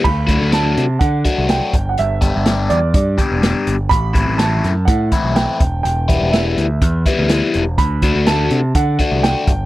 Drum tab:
CC |x-------|--------|--------|--------|
HH |-xxxxxxx|xxxxxxxx|xxxxxxxx|xxxxxxxx|
SD |--o---o-|--o---o-|--oo--o-|--o---o-|
BD |oo--oo-o|-o--oo--|oo--oo-o|-o--oo--|

CC |--------|
HH |xxxxxxxx|
SD |--o---o-|
BD |oo--oo-o|